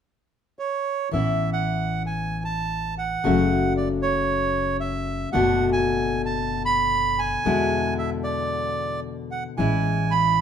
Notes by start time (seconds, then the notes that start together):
0.59 C#5
1.11 A1 E3 B3 C#4 E4 E5
1.53 F#5
2.06 G#5
2.45 A5
2.98 F#5
3.24 F#1 C#3 F#3 A3 C#4 F#4
3.77 D5
4.02 C#5
4.80 E5
5.33 F#1 B2 D3 A3 B3 F#4 F#5
5.73 G#5
6.25 A5
6.65 B5
7.19 G#5
7.45 E2 B2 D3 G#3 B3 E4
7.98 E5
8.24 D5
9.31 F#5
9.57 A1 E3 G#3 C#4 E4 G#5
10.11 B5